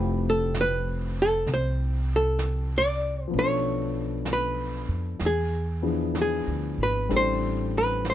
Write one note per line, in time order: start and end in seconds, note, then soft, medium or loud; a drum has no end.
0.00 1.43 F1 medium
0.00 3.26 F3 medium
0.00 3.32 A3 soft
0.00 3.33 C4 medium
0.00 3.33 E4 medium
0.00 3.34 G4 medium
0.00 0.28 B4 medium
0.30 0.59 A4 medium
0.54 brush sweep soft
0.54 snare soft
0.54 hi-hat pedal medium
0.61 1.20 B4 medium
1.22 1.51 A4 medium
1.46 3.28 C2 medium
1.46 brush sweep soft
1.46 snare soft
1.54 2.14 C5 medium
2.16 2.76 A4 medium
2.39 brush sweep soft
2.39 snare soft
2.39 hi-hat pedal medium
2.78 3.24 D5 medium
3.24 5.17 F3 medium
3.24 3.38 C5 medium
3.31 4.84 B1 medium
3.31 5.19 B3 soft
3.31 5.20 C#4 soft
3.31 brush sweep soft
3.37 5.22 D4 soft
3.37 5.23 A4 medium
3.37 4.32 C#5 medium
4.25 brush sweep soft
4.25 snare soft
4.25 hi-hat pedal soft
4.33 5.26 B4 medium
4.88 5.18 F2 medium
5.19 6.42 E2 medium
5.19 brush sweep soft
5.19 snare soft
5.26 6.20 G#4 medium
5.82 7.10 F3 medium
5.82 7.10 B3 soft
5.82 7.08 D4 soft
5.82 7.09 E4 soft
5.82 7.10 G#4 medium
6.15 brush sweep soft
6.15 snare soft
6.15 hi-hat pedal medium
6.22 6.82 G#4 medium
6.47 6.76 D2 soft
6.78 7.07 G#1 medium
6.83 7.13 B4 medium
7.09 8.14 A1 medium
7.09 8.14 G3 soft
7.09 8.14 C4 soft
7.09 8.14 D4 soft
7.09 8.14 E4 soft
7.09 8.14 A4 medium
7.09 brush sweep soft
7.09 snare soft
7.17 7.77 C5 medium
7.78 8.08 B4 medium
8.05 brush sweep soft
8.05 snare soft
8.05 hi-hat pedal soft
8.10 8.14 C5 medium